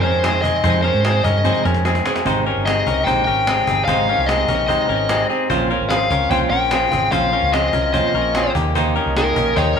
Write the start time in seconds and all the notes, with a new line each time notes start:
0.01 F2 C4 C#4 G#4 A#4 C5, cajon slap
0.05 D#3 G#3
0.24 D#3 G#3 C4 G#4, cajon slap
0.42 D#3 G#3 C4 G#4 D#5, cajon bass
0.64 F2 C3 D#3 G#3 C4 D#4 G#4 C5, cajon bass
0.82 D#3 G#3 C4 C#4 G#4 A#4 C5, cajon slap
0.94 G#2
1.03 D#3 G#3 C4 G#4, cajon slap
1.24 G2 D#3 G#3 C4 C#4 G#4 A#4 D#5, cajon bass, cajon slap
1.44 F2 C3 D#3 G#3 C4 D#4 G#4 C5, cajon bass, cajon slap
1.55 cajon slap
1.64 F2 D#3 G#3 C4 C#4 G#4 A#4, cajon slap
1.74 cajon slap
1.84 D#3 G#3 C4 G#4, cajon slap
1.95 cajon slap
2.05 D#3 G#3 C4 G#4, cajon slap
2.16 cajon slap
2.25 G#1 G#3 C4 D#4 G4 C5, cajon bass
2.46 C4 C#4 D#4 G4 A#4, cajon slap
2.56 G1
2.66 G#3 C4 D#4 G4 G#4 D#5, cajon slap
2.86 C2 C4 C#4 D#4 G4 A#4, cajon bass
3.04 A#1 G#3 C4 D#4 G4 C5 G5, cajon bass
3.25 G#1 C4 C#4 D#4 G4 A#4 G5, cajon slap
3.47 G#3 C4 D#4 G4 G#4, cajon slap
3.67 G1 C4 D#4 G4 G#4, cajon bass
3.85 G#1 G#3 C5 F5, cajon bass
3.89 C4 D#4 G4
4.07 C4 C#4 D#4 G4 A#4, cajon slap
4.18 C2
4.26 G#3 C4 G#4 D#5, cajon slap
4.31 D#4 G4
4.48 A#1 C4 C#4 D#4 G4 A#4, cajon bass
4.67 G#3 C4 D#4 G4 C5 D#5, cajon bass
4.89 G#1 C4 C#4 D#4 G4 A#4, cajon slap
5.09 G#3 C4 D#4 G4 G#4, cajon slap
5.29 C4 D#4 G4 G#4, cajon slap
5.50 A#1 A#2 F3 C4 C#4 F4 C5, cajon bass
5.70 C4 C#4 F4 A#4, cajon slap
5.80 G#1
5.90 F3 C4 C#4 F4 G#4 F5, cajon slap
6.10 C#2 C4 C#4 F4 A#4, cajon bass
6.30 C2 A#2 F3 C4 C#4 F4 C5 G5, cajon bass
6.50 A#1 C4 C#4 F4 A#4 G5, cajon slap
6.71 F3 C4 C#4 F4 G#4, cajon slap
6.91 G#1 C4 C#4 F4 G#4, cajon bass
7.11 A#1 A#2 F3 C4 C#4 F4 C5 F5, cajon bass
7.32 C4 C#4 F4 A#4, cajon slap
7.42 C#2
7.53 F3 C4 C#4 F4 G#4 D#5, cajon slap
7.73 C2 C4 C#4 F4 A#4, cajon bass, cajon slap
7.93 A#2 F3 C4 C#4 F4 C5 D#5, cajon bass
8.14 A#1 C4 C#4 F4 A#4, cajon slap
8.35 F3 C4 C#4 F4 G#4, cajon slap
8.55 D#2 A#3 D#4 G4, cajon bass
8.74 D#3 A#3 D#4 G4 A#4 C5 D#5 G5 D#6, cajon bass
8.96 A#3 C#4 D#4 G4 A#4, cajon slap
9.06 C2
9.16 D#3 A#3 D#4 G4 G#4 A#4, cajon slap
9.36 A#1 A#3 C#4 D#4 G4 A#4, cajon bass
9.56 D#2 D#3 A#3 D#4 G4 C5 C#5, cajon bass
9.76 C#2 D#4, cajon slap